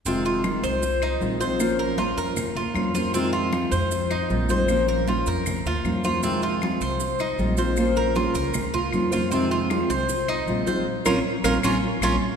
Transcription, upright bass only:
X:1
M:4/4
L:1/8
Q:1/4=156
K:Fm
V:1 name="Upright bass" clef=bass
F,,,3 C,,3 B,,,2- | B,,,3 F,,2 E,, F,,2- | F,,3 F,,3 B,,,2- | B,,,3 F,,2 E,, F,,2- |
F,,3 C,,3 B,,,2- | B,,,3 D,,3 F,,2- | F,,3 C,,3 B,,,2 | z B,,, z B,,, B,,, z B,,, z |]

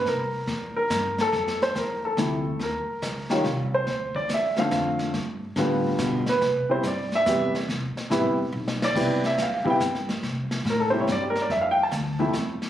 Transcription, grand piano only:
X:1
M:3/4
L:1/16
Q:"Swing" 1/4=142
K:C
V:1 name="Grand piano"
_B6 B4 A2- | A2 c2 _B2 A6 | _B6 z4 c2- | c2 d2 e2 f4 z2 |
z8 z2 B2- | B2 c2 d2 e4 z2 | z8 z2 d2- | d2 e2 f2 g4 z2 |
z4 _B A c _d =d G B d | e f g a4 z4 z |]
V:2 name="Grand piano"
z12 | z8 [C,F,A,E]2 z2 | z6 [_E,G,_DF]2 z4 | z6 [D,A,CF]6 |
z4 [D,G,B,F]6 z2 | z2 [C,G,B,E]2 z4 [C,G,B,G]2 z2 | z4 [C,G,B,E]2 z6 | [C,G,B,E]2 z4 [C,G,B,E]2 z4 |
z6 [C,G,_B,E]2 z4 | z6 [C,F,A,E]2 z4 |]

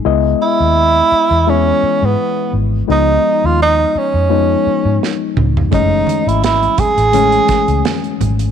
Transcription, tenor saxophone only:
X:1
M:4/4
L:1/16
Q:"Swing 16ths" 1/4=85
K:C#m
V:1 name="Tenor saxophone"
z2 E6 C3 B,3 z2 | D3 ^E D2 C8 z2 | D3 E E2 G8 z2 |]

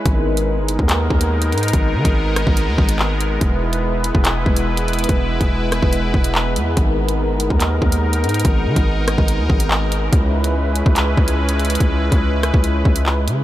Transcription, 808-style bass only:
X:1
M:4/4
L:1/16
Q:1/4=143
K:G#m
V:1 name="808-style bass" clef=bass
G,,,4- G,,, =G,,,2 D,,3 D,,4 ^G,,2 | G,,,2 D, G,,,4 G,,,2 D,, G,,,6 | E,,,6- E,,, E,,,3 E,,,6 | E,,,3 E,,,4 E,,,3 E,,,4 E,,2 |
G,,,4- G,,, =G,,,2 D,,3 D,,4 ^G,,2 | G,,,2 D, G,,,4 G,,,2 D,, G,,,6 | C,,6- C,, C,,3 C,,6 | C,,3 C,,4 C,,3 C,,4 C,2 |]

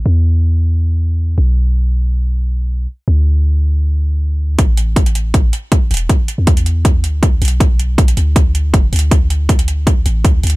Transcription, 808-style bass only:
X:1
M:4/4
L:1/16
Q:1/4=159
K:Dlyd
V:1 name="808-style bass" clef=bass
E,,12- E,,2 B,,,2- | B,,,12- B,,,2 z2 | D,,16 | A,,,8 A,,,2 z4 E,,,2 |
z3 E,,6- E,, D,,4 B,,,2- | B,,,6 D,,6 F,,,2 D,,2- | D,,8- D,,2 A,,,2 D,,2 D,,2 |]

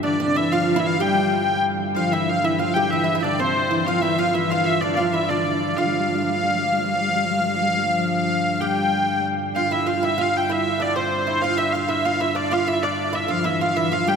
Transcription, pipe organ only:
X:1
M:6/8
L:1/8
Q:3/8=127
K:Ddor
V:1 name="Pipe organ" clef=bass
[G,,D,]6- | [G,,D,]6 | [G,,D,]6- | [G,,D,]6- |
[G,,D,]6- | [G,,D,]6 | [G,,D,]6- | [G,,D,]6- |
[G,,D,]6- | [G,,D,]6 | [G,,D,]6- | [G,,D,]6- |
[G,,D,]6- | [G,,D,]6 | [G,,D,]6 |]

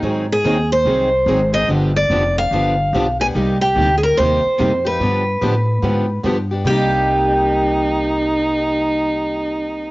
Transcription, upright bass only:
X:1
M:4/4
L:1/8
Q:"Swing" 1/4=145
K:Cm
V:1 name="Upright bass" clef=bass
A,,2 E,,2 C,,2 A,,,2 | G,,,2 F,,,2 G,,,2 =B,,,2 | C,,2 D,,2 E,, z F,,2 | G,,2 =A,,2 _A,,2 G,,2 |
C,,8- | C,,8 |]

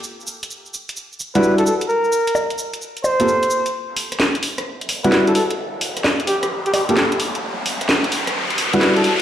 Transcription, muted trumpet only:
X:1
M:4/4
L:1/16
Q:"Swing 16ths" 1/4=130
K:Em
V:1 name="Muted trumpet"
z8 z3 B2 A A z | _B6 z4 c6 | z8 z3 B2 A A z | z6 G G z G G G G z3 |
z8 z3 B2 A A z |]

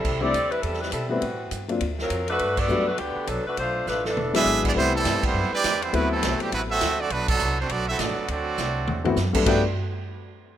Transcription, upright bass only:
X:1
M:4/4
L:1/8
Q:"Swing" 1/4=204
K:G
V:1 name="Upright bass" clef=bass
C,,2 D,,2 E,,2 B,,2 | A,,2 G,,2 D,,2 ^E,,2 | G,,2 F,,2 D,, z B,,, z | B,,,2 A,,,2 E,,,2 ^G,,,2 |
C,,2 G,, z F,, z E,,2 | D,,2 B,,, z A,,,2 D,,2 | B,,,2 C,,2 B,,,2 A,,, z | D,,2 C,,2 E,,2 F,,2 |
G,,, z6 z |]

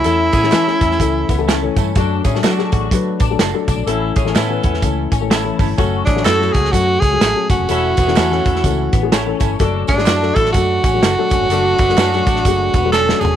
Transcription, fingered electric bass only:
X:1
M:4/4
L:1/16
Q:"Swing" 1/4=126
K:A
V:1 name="Fingered electric bass" clef=bass
E,,2 A,,2 E,2 E,,2 C,,2 C,,4 =G,,2 | F,,2 A,,2 F,2 A,,,2 F,2 A,,,2 F,,, z B,,, ^A,,, | A,,,2 A,,,2 A,,2 E,,2 C,,2 A,,,4 =G,,,2 | F,,,2 A,,,2 F,,2 C,,2 F,,2 C,,2 A,,, z F,,, =F,,, |
E,,,2 E,,,2 E,,2 E,,2 C,,2 A,,,4 =G,,,2 | F,,,2 G,,,2 F,,2 A,,,2 F,,2 A,,,2 F,,, z G,,, =G,,, | F,,,2 F,,,2 F,,2 A,,,2 F,,,2 E,,,4 =F,,,2 |]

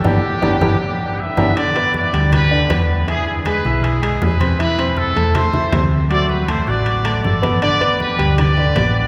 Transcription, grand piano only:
X:1
M:4/4
L:1/8
Q:1/4=158
K:G
V:1 name="Grand piano"
[B,DG] z [B,DG] [B,DG] z3 [B,DG] | [D,Dd] [B,Bb]2 [G,Gg]2 [D,Dd] [B,Bb]2 | [E,Ee]2 [^G,^G^g] [Eee']2 [G,Gg]2 [Ccc'] | [E,Ee] [Ccc']2 [A,Aa]2 [E,Ee] [Ccc']2 |
[F,Ff]2 [A,Aa] [Fff']2 [A,Aa]2 [B,Bb] | [D,Dd] [B,Bb]2 [G,Gg]2 [D,Dd] [B,Bb]2 |]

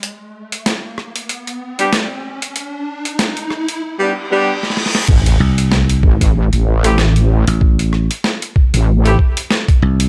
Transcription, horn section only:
X:1
M:4/4
L:1/16
Q:"Swing 16ths" 1/4=95
K:Am
V:1 name="Horn section"
z8 z3 [G,B,DG] z4 | z8 z [G,B,DG] z [G,B,DG] z4 | z8 z3 [A,CEG] z4 | z8 z [A,CEG] z6 |]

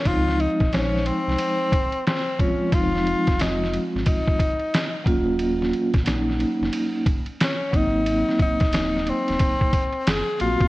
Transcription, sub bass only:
X:1
M:4/4
L:1/16
Q:"Swing 16ths" 1/4=90
K:Db
V:1 name="Sub bass" clef=bass
D,,3 B,,,4 C,, z8 | F,,,3 F,,,4 A,,, z6 E,,,2- | E,,,3 B,,,4 G,,, z6 A,,,2- | A,,,2 z E,,,4 E,,, z4 G,,, z B,,, C,, |]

